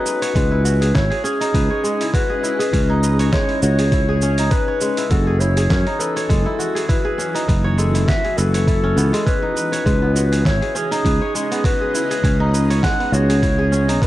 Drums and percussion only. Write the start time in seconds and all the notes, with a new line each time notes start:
0.06 cabasa
0.22 open hi-hat, cabasa
0.35 kick, open hi-hat, cabasa
0.65 cabasa
0.82 open hi-hat, cabasa
0.95 kick, snare, open hi-hat, cabasa
1.12 open hi-hat
1.25 cabasa
1.42 open hi-hat, cabasa
1.54 kick, open hi-hat, cabasa
1.84 cabasa
2.01 open hi-hat, cabasa
2.14 kick, open hi-hat, cabasa
2.44 cabasa
2.60 open hi-hat, cabasa
2.73 kick, open hi-hat, cabasa
3.03 cabasa
3.19 open hi-hat, cabasa
3.33 kick, snare, open hi-hat, cabasa
3.49 open hi-hat
3.62 cabasa
3.79 open hi-hat, cabasa
3.92 kick, open hi-hat, cabasa
4.21 cabasa
4.38 open hi-hat, cabasa
4.51 kick, open hi-hat, cabasa
4.81 cabasa
4.97 open hi-hat, cabasa
5.11 kick, open hi-hat, cabasa
5.41 cabasa
5.57 open hi-hat, cabasa
5.70 kick, snare, open hi-hat, cabasa
5.87 open hi-hat
6.00 cabasa
6.17 open hi-hat, cabasa
6.30 kick, open hi-hat, cabasa
6.60 cabasa
6.76 open hi-hat, cabasa
6.89 kick, open hi-hat, cabasa
7.19 cabasa
7.36 open hi-hat, cabasa
7.49 kick, open hi-hat, cabasa
7.78 cabasa
7.95 open hi-hat, cabasa
8.08 kick, snare, open hi-hat, cabasa
8.24 open hi-hat
8.38 cabasa
8.54 open hi-hat, cabasa
8.67 kick, open hi-hat, cabasa
8.98 cabasa
9.14 open hi-hat, cabasa
9.27 kick, open hi-hat, cabasa
9.57 cabasa
9.73 open hi-hat, cabasa
9.86 kick, open hi-hat, cabasa
10.16 cabasa
10.33 open hi-hat, cabasa
10.45 kick, snare, open hi-hat, cabasa
10.63 open hi-hat
10.76 cabasa
10.92 open hi-hat, cabasa
11.05 kick, open hi-hat, cabasa
11.35 cabasa
11.52 open hi-hat, cabasa
11.64 kick, open hi-hat, cabasa
11.95 cabasa
12.11 open hi-hat, cabasa
12.24 kick, open hi-hat, cabasa
12.54 cabasa
12.71 open hi-hat, cabasa
12.83 kick, snare, open hi-hat, cabasa
13.00 open hi-hat
13.13 cabasa
13.30 open hi-hat, cabasa
13.43 kick, open hi-hat, cabasa
13.73 cabasa
13.89 open hi-hat, cabasa
14.02 kick, open hi-hat, cabasa